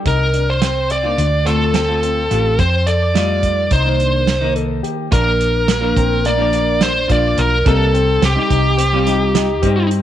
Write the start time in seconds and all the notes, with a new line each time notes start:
0.05 C2 D#4 A#4, kick, closed hi-hat
0.34 D4, closed hi-hat
0.50 C5
0.62 C4, snare, closed hi-hat
0.90 D5, closed hi-hat
1.03 A#3 D4 D#4 F4
1.17 D2 D4, closed hi-hat
1.45 A3 C4 F4 A4, closed hi-hat
1.74 C4 A4, snare, closed hi-hat
1.88 A3 C4 F4
2.03 C4, closed hi-hat
2.30 A1 A3 C4 F4 G4, closed hi-hat
2.59 F2 C4 C5, kick, closed hi-hat
2.87 A4 D5, closed hi-hat
3.14 G3 A3 D#4 F4, snare, closed hi-hat
3.43 kick, closed hi-hat
3.71 C2 D#4 C5, kick, closed hi-hat
3.85 D#3 A#3 D4
3.99 D4, closed hi-hat
4.27 snare, closed hi-hat
4.40 D#3 A#3 D#4
4.56 A4, closed hi-hat
4.83 G4, closed hi-hat
5.11 A#1 F3 A#3 D4 A#4, kick, closed hi-hat
5.41 closed hi-hat
5.68 A#3, snare, closed hi-hat
5.81 F3 A#3 D4
5.96 A#1 C4, kick, closed hi-hat
6.25 A#3 D5, closed hi-hat
6.38 F3 A#3 D4
6.53 A#3, closed hi-hat
6.81 D4 C5, snare, closed hi-hat
7.08 A#1 F3 A#3 D4 F4 D5, kick, closed hi-hat
7.38 B1 A#4, closed hi-hat
7.65 C2 G3 A#3 C4 D#4 A4, kick, closed hi-hat
7.94 C4, closed hi-hat
8.22 C2 C4 G4, snare, closed hi-hat
8.35 G3 C4 D#4
8.50 C2 D#4, kick, closed hi-hat
8.78 C4, closed hi-hat
8.93 G3 C4 F4
9.06 D#4, snare, closed hi-hat
9.34 D#4, snare, closed hi-hat
9.62 G2 G3 C4 D#4, kick, closed hi-hat
9.91 closed hi-hat